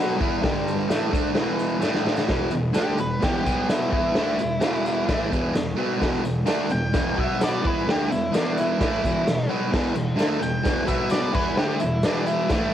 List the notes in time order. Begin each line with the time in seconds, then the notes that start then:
Already playing: B2 F#3 B3
0.19 E3 B3 E4, kick, tambourine
0.42 G2 D3 G3, kick, snare, open hi-hat
0.57 tambourine
0.68 tambourine
0.80 tambourine
0.89 A2 E3 A3, snare, open hi-hat, tambourine
1.02 tambourine
1.12 D3 A3 D4, kick, tambourine
1.26 tambourine
1.34 E2 B2 E3, snare, open hi-hat, tambourine
1.59 tambourine
1.70 tambourine
1.81 A2 E3 A3, snare, tambourine
1.94 snare, tambourine
2.06 snare, tambourine
2.16 snare, tambourine
2.28 E2 B2 E3, kick, snare, open hi-hat, tambourine
2.51 E2 B2, tambourine
2.73 D3 A3 D4, snare, open hi-hat, tambourine
2.78 G4
2.98 E2 B2 B4, tambourine
3.20 E2 B2 E3 G4, kick, snare, open hi-hat, tambourine
3.45 B2 F#3 B3, kick, tambourine
3.69 E4, snare, open hi-hat, tambourine
3.91 E3 B3 E4, kick
4.15 D3 A3 D4, snare, open hi-hat, tambourine
4.39 E2 B2, tambourine
4.60 E2 B2 E3, snare, open hi-hat, tambourine
4.86 tambourine
5.08 A2 E3 A3, kick, snare, open hi-hat, tambourine
5.30 E2 B2 E3, kick, tambourine
5.54 E2 B2, snare, open hi-hat, tambourine
5.77 B2 F#3 B3
6.00 E2 B2 E3, kick, snare, open hi-hat, tambourine
6.24 E2 B2, tambourine
6.46 D3 A3 D4, snare, open hi-hat, tambourine
6.70 E2 B2 G5, tambourine
6.93 E2 B2 E3, kick, snare, open hi-hat, tambourine
7.16 B2 F#3 B3 E5, kick
7.41 D5, snare, open hi-hat, tambourine
7.63 E3 B3 E4, kick
7.67 B4
7.87 D3 A3 D4 G4, snare, open hi-hat, tambourine
8.10 E2 B2 E4, tambourine
8.33 E2 B2 E3 D4, snare, open hi-hat, tambourine
8.58 E4, tambourine
8.79 A2 E3 A3, kick, snare, open hi-hat, tambourine
9.04 E2 B2 E3, kick, tambourine
9.27 E2 B2, snare, open hi-hat, tambourine
9.49 B2 F#3 B3, tambourine
9.71 E2 B2 E3, kick, snare, crash, tambourine
9.94 E2 B2, tambourine
10.16 D3 A3 D4, tambourine
10.20 snare, open hi-hat
10.40 E2 B2 G5, tambourine
10.63 E2 B2 E3, kick, snare, open hi-hat, tambourine
10.86 B2 F#3 B3 E5, kick, tambourine
11.10 D5, snare, open hi-hat, tambourine
11.33 E3 B3 E4 B4, kick, crash
11.57 D3 A3 D4 G4, snare, tambourine
11.80 E2 B2 E4, tambourine
12.03 E2 B2 E3 D4, snare, open hi-hat, tambourine
12.26 E4, tambourine
12.49 A2 E3 A3, kick, snare, open hi-hat, tambourine